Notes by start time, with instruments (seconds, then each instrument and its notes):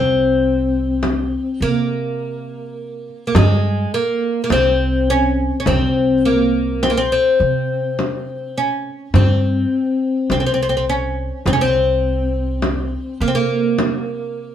Already playing: upright bass C2, oud C4
1.03 frame drum
1.61 upright bass C3, oud A#3
3.27 oud A#3
3.35 upright bass G2, oud G#3, frame drum
3.94 oud A#3
4.44 oud A#3
4.50 upright bass C2, oud C4, frame drum
5.10 oud C#4
5.60 oud C#4
5.66 upright bass C2, oud C4, frame drum
6.25 oud A#3
6.83 oud C4, frame drum
6.90 oud A#3
6.97 oud C4
7.12 oud C4
7.40 upright bass C3
7.99 frame drum
8.58 oud C#4
9.14 upright bass G2, oud C4, frame drum
10.30 upright bass C2, oud C4, frame drum
10.40 oud C4
10.46 oud C4
10.54 oud C4
10.63 oud C4
10.69 oud C4
10.77 oud C4
10.90 oud C#4
11.46 upright bass C2, oud C4, frame drum
11.53 oud C#4
11.61 oud C4
12.62 frame drum
13.20 upright bass C3, oud A#3
13.28 oud C4
13.35 oud A#3
13.78 frame drum